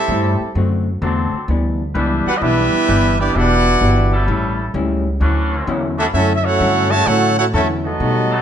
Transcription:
Already playing: trombone section G3 C4 E4 A4, trumpet section C4 G4 A4 E5
0.08 upright bass G2, hollow-body jazz guitar A2 G3 C4 E4
0.40 muted upright bass stroke
0.55 upright bass F#2, hollow-body jazz guitar D3 A3 C4 F#4
1.02 upright bass E2, hollow-body jazz guitar D3 A3 C4 F#4, trombone section F#3 C4 D4 A4
1.33 muted upright bass stroke
1.48 upright bass D2, hollow-body jazz guitar G2 E3 B3 D4
1.95 upright bass C#2, hollow-body jazz guitar G2 E3 B3 D4, trombone section G3 D4 E4 B4
2.26 trumpet section D4 G4 B4 F#5, trombone section F#4, muted upright bass stroke
2.37 trumpet section D#5
2.41 upright bass B1, hollow-body jazz guitar G2 E3 B3 D4, trombone section E3 B3 E4, trumpet section D4 G4 B4 E5
2.73 muted upright bass stroke
2.87 upright bass G1, hollow-body jazz guitar G2 E3 B3 D4, trombone section G3 D4 E4 B4
3.20 trombone section E3 B3 D4, trumpet section B3 E4 G4 D5
3.34 upright bass E1, hollow-body jazz guitar E3 B3 D4 G4, trombone section G3 B3 D4 E4 F#4 B4, trumpet section E4 B4 D5 F#5
3.80 upright bass G1, hollow-body jazz guitar E3 B3 D4 G4
4.12 trombone section G3 C#4 E4 A4
4.26 upright bass A1, hollow-body jazz guitar A2 G3 C#4 E4
4.74 upright bass C#2, hollow-body jazz guitar A2 G3 C#4 E4
5.20 upright bass D2, hollow-body jazz guitar D3 F#3 C#4 E4, trombone section E3 C#4 D4 F#4
5.67 upright bass E2, hollow-body jazz guitar D3 F#3 C#4 E4
5.97 trombone section E3 A3 C#4 D4 E4 F#4, trumpet section C#4 F#4 A4 E5
6.13 upright bass F#2, hollow-body jazz guitar D3 F#3 C#4 E4, trombone section A3 C#4 E4, trumpet section C#4 F#4 A4 E5
6.35 trumpet section E5
6.44 trombone section A3 C#4 F#4, trumpet section E4 A4 C#5 F#5
6.60 upright bass G2, hollow-body jazz guitar D3 F#3 C#4 E4
6.90 trombone section C#3 F#3, trumpet section F#4 C#5 E5 A5
6.94 trombone section A3
7.06 upright bass A2, hollow-body jazz guitar D3 F#3 C#4 E4, trombone section A3 C#4 F#4, trumpet section E4 A4 C#5 F#5
7.37 trombone section A3 C#4 F#4, trumpet section E4 A4 C#5 F#5
7.53 upright bass E2, hollow-body jazz guitar D3 F#3 C#4 E4, trombone section A3 C#4 E4, trumpet section C#4 F#4 A4 E5
7.85 trombone section F#3 A3 D#4, trumpet section B3 F#4 A4 D#5
8.00 upright bass B2, hollow-body jazz guitar B2 G3 A3 D#4
8.31 trombone section F#3 B3 D#4 A4

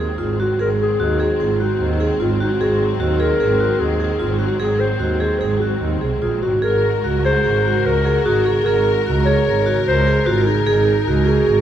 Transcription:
Already playing: double bass D#2, string section F#3 G#3 C4, clarinet G#4
0.00 vibraphone G#4
0.18 double bass G#1, vibraphone F4
0.40 vibraphone F#4, clarinet F#4
0.59 double bass G#1, vibraphone G#4, clarinet A#4
0.82 clarinet G#4
1.00 double bass D#2, vibraphone F#4
1.20 clarinet F#4, vibraphone G#4
1.40 double bass G#1, clarinet F4, vibraphone G#4
1.60 clarinet D#4, vibraphone F#4
1.80 double bass D#2
2.00 vibraphone G#4
2.20 double bass G#1, vibraphone F4, clarinet F4
2.41 clarinet D#4, vibraphone F#4
2.60 double bass G#1, clarinet F#4, vibraphone G#4
2.99 double bass D#2, vibraphone F#4
3.19 vibraphone G#4, clarinet A#4
3.40 double bass G#1, vibraphone G#4
3.60 vibraphone F#4
3.80 double bass D#2, clarinet G#4
4.00 vibraphone G#4
4.20 double bass G#1, vibraphone F4
4.39 vibraphone F#4, clarinet F#4
4.59 double bass G#1, clarinet G#4, vibraphone G#4
4.80 clarinet C5
5.00 double bass D#2, vibraphone F#4
5.20 vibraphone G#4, clarinet C5
5.39 double bass G#1, clarinet G#4, vibraphone G#4
5.60 clarinet F#4, vibraphone F#4
5.81 double bass D#2
6.01 double bass C2, vibraphone G#4
6.21 double bass A#1, vibraphone F4, clarinet G#4
6.42 double bass G#1, clarinet F#4, vibraphone F#4
6.62 double bass G#1, string section F#4 A#4, vibraphone G#4, clarinet A#4
7.04 double bass C#2, vibraphone F#4
7.25 vibraphone G#4, clarinet C5
7.44 double bass G#1, vibraphone G#4
7.65 vibraphone F#4
7.85 double bass C#2, clarinet A#4
8.05 vibraphone G#4
8.25 double bass G#1, vibraphone F#4, clarinet G#4
8.45 clarinet F#4, vibraphone G#4
8.65 double bass G#1, vibraphone G#4, clarinet A#4
9.06 double bass C#2, vibraphone F#4
9.25 vibraphone G#4, clarinet C#5
9.46 double bass G#1, vibraphone G#4
9.66 vibraphone F#4, string section G#4
9.87 double bass C#2, clarinet C5
10.06 vibraphone G#4
10.26 double bass G#1, clarinet F4, vibraphone F#4
10.47 clarinet D#4, vibraphone G#4
10.66 double bass G#1, vibraphone G#4
11.07 double bass C#2, vibraphone F#4
11.26 clarinet F#4, vibraphone G#4
11.47 double bass G#1, vibraphone G#4

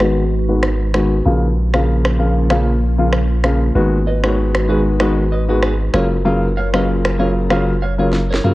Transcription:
Already playing: sub bass G#1, ambient pad G#3 D#4 F#4 B4
0.00 grand piano D#3 G#3 B3 F#4, finger snap, cross-stick
0.48 grand piano D#3 G#3 B3 F#4
0.63 finger snap, cross-stick
0.94 grand piano D#3 G#3 B3 F#4, finger snap, cross-stick
1.25 sub bass A#1, grand piano C#3 F3 A#3 F4, ambient pad A#3 C#4 F4
1.74 grand piano C#3 F3 A#3 F4, finger snap, cross-stick
2.05 finger snap, cross-stick
2.19 grand piano C#3 F3 A#3 F4
2.50 grand piano C#3 F3 A#3 F4, finger snap, cross-stick
2.98 grand piano C#3 F3 A#3 F4
3.13 finger snap, cross-stick
3.44 grand piano C#3 F3 A#3 F4, finger snap, cross-stick
3.75 sub bass G#1, grand piano D#3 G#3 B3 F#4, ambient pad G#3 D#4 F#4 B4
4.07 clean electric guitar B4 D#5
4.23 grand piano D#3 G#3 B3 F#4, clean electric guitar A#4 C#5, finger snap, cross-stick
4.55 finger snap, cross-stick
4.69 grand piano D#3 G#3 B3 F#4, clean electric guitar G#4 B4
5.00 grand piano D#3 G#3 B3 F#4, clean electric guitar B4 D#5, finger snap, cross-stick
5.32 clean electric guitar B4 D#5
5.49 grand piano D#3 G#3 B3 F#4, clean electric guitar G#4 B4
5.63 clean electric guitar G#4 B4, finger snap, cross-stick
5.94 sub bass F#1, grand piano C#3 F#3 A#3 F4, ambient pad F#3 C#4 F4 A#4, clean electric guitar A#4 C#5, finger snap, cross-stick
6.25 grand piano C#3 F#3 A#3 F4
6.57 clean electric guitar C#5 F5
6.73 grand piano C#3 F#3 A#3 F4, clean electric guitar B4 D#5, finger snap, cross-stick
7.05 finger snap, cross-stick
7.19 grand piano C#3 F#3 A#3 F4, clean electric guitar A#4 C#5
7.50 grand piano C#3 F#3 A#3 F4, clean electric guitar C#5 F5, finger snap, cross-stick
7.82 clean electric guitar C#5 F5
7.98 grand piano C#3 F#3 A#3 F4, clean electric guitar A#4 C#5
8.13 snare
8.31 clean electric guitar A#4 C#5, snare
8.44 grand piano C#3 F#3 A#3 F4, clean electric guitar F#4 A#4, mid tom

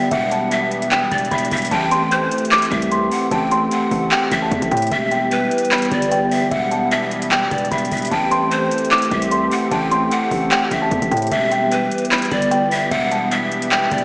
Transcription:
Already playing: analog synth pad E3 G3 B3 G4, pan flute E5
0.11 808-style bass E1, kalimba E5, pan flute F#5, kick, closed hi-hat
0.31 kalimba A5, closed hi-hat
0.51 pan flute E5, closed hi-hat
0.71 closed hi-hat
0.82 closed hi-hat
0.91 kalimba G5, clap, closed hi-hat
1.11 808-style bass E1, pan flute D5, kick, closed hi-hat
1.18 closed hi-hat
1.25 closed hi-hat
1.31 808-style bass E1, pan flute E5, kalimba B5, kick, closed hi-hat
1.38 closed hi-hat
1.45 closed hi-hat
1.51 808-style bass E1, pan flute E5, kick, closed hi-hat, open hi-hat
1.57 closed hi-hat
1.62 closed hi-hat
1.65 closed hi-hat
1.67 closed hi-hat
1.71 808-style bass A1, analog synth pad A3 C4, pan flute G5, kalimba A5, kick, closed hi-hat
1.91 kalimba C6, closed hi-hat
2.11 pan flute C5, closed hi-hat
2.31 closed hi-hat
2.38 closed hi-hat
2.45 closed hi-hat
2.51 kalimba D6, clap, closed hi-hat
2.58 closed hi-hat
2.62 closed hi-hat
2.65 closed hi-hat
2.71 808-style bass C2, pan flute E5, kick, closed hi-hat
2.82 closed hi-hat
2.91 kalimba C6, closed hi-hat
3.12 pan flute F#5, open hi-hat
3.31 808-style bass A1, pan flute G5, kalimba A5, kick, closed hi-hat
3.51 kalimba C6, closed hi-hat
3.71 pan flute F#5, closed hi-hat
3.91 808-style bass A1, kick, open hi-hat
4.11 kalimba G5, clap, closed hi-hat
4.31 808-style bass A1, pan flute E5, kick, closed hi-hat
4.42 kalimba A5
4.51 808-style bass E2, kick, closed hi-hat
4.62 808-style bass A1, kick, closed hi-hat
4.71 808-style bass A2, kalimba G5, kick, closed hi-hat
4.77 closed hi-hat
4.82 closed hi-hat
4.87 closed hi-hat
4.91 808-style bass E1, analog synth pad E3 G3 B3, kalimba E5, pan flute E5, kick, closed hi-hat
5.11 kalimba G5, closed hi-hat
5.31 pan flute B4, closed hi-hat
5.51 closed hi-hat
5.58 closed hi-hat
5.65 closed hi-hat
5.71 kalimba B5, clap, closed hi-hat
5.78 closed hi-hat
5.82 closed hi-hat
5.85 closed hi-hat
5.91 808-style bass G1, pan flute D5, kick, closed hi-hat
6.02 closed hi-hat
6.11 kalimba G5, closed hi-hat
6.31 pan flute E5, open hi-hat
6.51 808-style bass E1, kalimba E5, pan flute F#5, kick, closed hi-hat
6.71 kalimba A5, closed hi-hat
6.91 pan flute E5, closed hi-hat
7.11 closed hi-hat
7.22 closed hi-hat
7.31 kalimba G5, clap, closed hi-hat
7.51 808-style bass E1, pan flute D5, kick, closed hi-hat
7.58 closed hi-hat
7.65 closed hi-hat
7.71 808-style bass E1, pan flute E5, kalimba B5, kick, closed hi-hat
7.78 closed hi-hat
7.85 closed hi-hat
7.91 808-style bass E1, pan flute E5, kick, closed hi-hat, open hi-hat
7.97 closed hi-hat
8.02 closed hi-hat
8.05 closed hi-hat
8.07 closed hi-hat
8.11 808-style bass A1, analog synth pad A3 C4 G4, pan flute G5, kalimba A5, kick, closed hi-hat
8.31 kalimba C6, closed hi-hat
8.51 pan flute C5, closed hi-hat
8.71 closed hi-hat
8.78 closed hi-hat
8.85 closed hi-hat
8.91 kalimba D6, clap, closed hi-hat
8.98 closed hi-hat
9.02 closed hi-hat
9.05 closed hi-hat
9.11 808-style bass C2, pan flute E5, kick, closed hi-hat
9.22 closed hi-hat
9.31 kalimba C6, closed hi-hat
9.51 pan flute F#5, open hi-hat
9.71 808-style bass A1, pan flute G5, kalimba A5, kick, closed hi-hat
9.91 kalimba C6, closed hi-hat
10.11 pan flute F#5, closed hi-hat
10.31 808-style bass A1, kick, open hi-hat
10.51 kalimba G5, clap, closed hi-hat
10.71 808-style bass A1, pan flute E5, kick, closed hi-hat
10.82 kalimba A5
10.91 808-style bass E2, kick, closed hi-hat
11.02 808-style bass A1, kick, closed hi-hat
11.11 808-style bass A2, kalimba G5, kick, closed hi-hat
11.17 closed hi-hat
11.22 closed hi-hat
11.27 closed hi-hat
11.31 808-style bass E1, analog synth pad E3 G3 B3 G4, pan flute E5, kalimba E5, kick, closed hi-hat
11.51 kalimba G5, closed hi-hat
11.71 pan flute B4, closed hi-hat
11.91 closed hi-hat
11.98 closed hi-hat
12.05 closed hi-hat
12.11 kalimba B5, clap, closed hi-hat
12.18 closed hi-hat
12.22 closed hi-hat
12.25 closed hi-hat
12.31 808-style bass G1, pan flute D5, kick, closed hi-hat
12.42 closed hi-hat
12.51 kalimba G5, closed hi-hat
12.71 pan flute E5, open hi-hat
12.91 808-style bass E1, kalimba E5, pan flute F#5, kick, closed hi-hat
13.11 kalimba A5, closed hi-hat
13.31 pan flute E5, closed hi-hat
13.51 closed hi-hat
13.62 closed hi-hat
13.71 kalimba G5, clap, closed hi-hat
13.91 808-style bass E1, pan flute D5, kick, closed hi-hat
13.98 closed hi-hat

